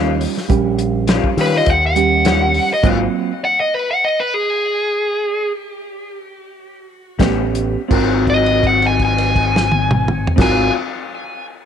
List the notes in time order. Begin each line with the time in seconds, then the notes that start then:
Already playing: D#2 G3 C#4 F4
0.21 open hi-hat
0.37 snare
0.49 A#1 G3 C#4 G4, kick, closed hi-hat
0.79 closed hi-hat
1.07 D#3 G3 C#4 F4, snare, closed hi-hat
1.24 kick
1.37 D#3 G3 C#4 F4 B4, open hi-hat
1.53 G3 C#4 F4
1.57 D#5
1.66 D#2 F#5, kick, closed hi-hat
1.86 F#5
1.96 G3 C#4 G4, closed hi-hat
2.25 D#3 G3 C#4 F4, snare, closed hi-hat
2.54 open hi-hat
2.73 D#5
2.83 G#1 G#2 F#3 A#3 C4 F4, kick, closed hi-hat, crash
3.45 F#5
3.60 D#5
3.75 B4
3.91 F#5
4.05 D#5
4.20 B4
4.34 G#4
7.19 A1 A2 G3 B3 C#4 G4, kick, snare, closed hi-hat
7.55 closed hi-hat
7.88 G#1 G#2 F#3 C4 F4 F#4 A#4, kick, crash
7.94 C4
8.27 D#5, kick, crash
8.46 crash
8.63 F#5, kick, crash
8.82 crash
8.87 G#5
8.99 kick, crash
9.05 G#5
9.18 crash
9.36 kick, crash
9.56 snare
9.72 high tom
9.91 mid tom
10.08 mid tom
10.27 floor tom
10.36 G#1 G#2 F#3 C4 F4 F#4, kick, snare, crash
10.40 C4 F4 A#4 G#5